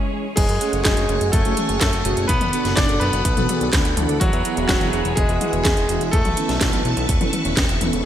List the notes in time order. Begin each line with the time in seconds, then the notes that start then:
Already playing: C#3 E3 G#3 C#4 E4 G#4 C#5
0.13 G#3 C#4 E4 G#4
0.36 F#1 G#3 G#4 C#5 F#5 G#5 C#6, kick, closed hi-hat, crash
0.49 F#2, closed hi-hat
0.61 A3 C#4 F#4 G#4, closed hi-hat
0.73 F#1, closed hi-hat
0.84 F#1 G#3 G#4, kick, snare, clap, closed hi-hat
0.97 F#1, closed hi-hat
1.09 F#1 A3 C#4 F#4 G#4, closed hi-hat
1.21 F#1, closed hi-hat
1.32 F#1 A3 A4, kick, closed hi-hat
1.45 F#1 A3 C#4 F#4 G#4, closed hi-hat
1.57 A3 C#4 F#4 G#4, closed hi-hat, high tom
1.69 F#1, closed hi-hat
1.80 F#2 A3 A4, kick, snare, clap, closed hi-hat
1.93 F#1, closed hi-hat
2.05 F#1 B2 A3 C#4 F#4 G#4, closed hi-hat
2.17 F#1, closed hi-hat
2.28 B1 B3 A4 B4 D5 B5, kick, closed hi-hat
2.41 F#1, closed hi-hat, high tom
2.53 B2 B3 D4 F#4 A4, closed hi-hat
2.65 F#1, snare, closed hi-hat
2.76 F#1 D4 D5, kick, snare, clap, closed hi-hat
2.89 F#1, closed hi-hat
3.00 F#1 B2 B3 D4 F#4 A4 B4, closed hi-hat
3.13 F#1, closed hi-hat
3.25 B1, kick, closed hi-hat
3.37 B1 B2 B3 D4 F#4 A4, closed hi-hat, high tom
3.49 B2 B3 D4 F#4 G#4, closed hi-hat, high tom
3.61 B1, closed hi-hat
3.73 D2, kick, snare, clap, closed hi-hat
3.85 D2, closed hi-hat
3.97 D2 E3 B3 D4 F#4 A4, closed hi-hat, high tom
4.09 D2, closed hi-hat
4.20 E1 F#3 F#4 G#4 E5 F#5, kick, closed hi-hat
4.33 E2, closed hi-hat
4.45 E3 B3 E4 F#4 G#4, closed hi-hat
4.57 E1, closed hi-hat
4.68 E1 F#3 F#4, kick, snare, clap, closed hi-hat
4.81 E1, closed hi-hat
4.93 E1 E3 B3 E4 F#4 G#4, closed hi-hat
5.05 E1, closed hi-hat
5.15 E1 G#3 G#4, kick, closed hi-hat
5.29 E1 E3 B3 E4 F#4 G#4, closed hi-hat
5.41 E3 B3 E4 F#4 G#4, closed hi-hat, high tom
5.53 E1, closed hi-hat
5.63 E2 G#3 G#4, kick, snare, clap, closed hi-hat
5.77 E1, closed hi-hat
5.89 E1 E3 B3 E4 F#4 G#4, closed hi-hat
6.01 E1, closed hi-hat
6.11 E1 A3 A4 B4 A5 C#6, kick, closed hi-hat
6.25 B1, closed hi-hat, high tom
6.37 E3 B3 C#4 E4 A4, closed hi-hat
6.49 B1, snare, closed hi-hat
6.61 B1, kick, snare, clap, closed hi-hat
6.73 B1, closed hi-hat
6.85 B1 E3 B3 C#4 E4 A4, closed hi-hat
6.97 B1, closed hi-hat
7.09 E1, kick, closed hi-hat
7.21 E1 E3 B3 C#4 E4 A4, closed hi-hat, high tom
7.33 E3 B3 C#4 E4 F#4, closed hi-hat, high tom
7.45 E1, closed hi-hat
7.57 E1, kick, snare, clap, closed hi-hat
7.69 E1, closed hi-hat
7.81 E1 B3 C#4 E4 A4, closed hi-hat, high tom
7.93 E1, closed hi-hat